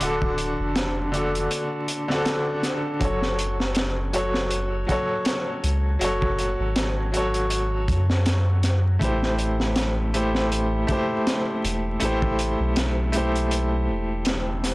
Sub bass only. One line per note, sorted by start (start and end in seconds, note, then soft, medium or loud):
0.01 0.56 D1 loud
0.60 1.48 F1 loud
3.01 4.85 F#1 loud
5.64 5.97 C#2 loud
6.01 6.56 F#1 loud
6.60 7.90 G#1 loud
7.88 8.98 F#2 medium
9.01 10.85 A1 loud
11.64 11.98 E1 loud
12.02 12.56 A1 loud
12.60 13.91 B1 loud
13.89 14.74 E1 loud